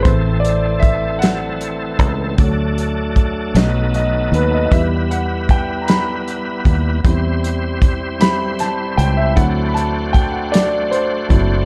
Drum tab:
HH |xxxxxx|xxxxxx|xxxxxx|xxxxxx|
SD |---o--|---o--|---o--|---oo-|
BD |o-o--o|o-o---|o-o--o|o-o---|

HH |xxxxxx|
SD |---o--|
BD |o-o--o|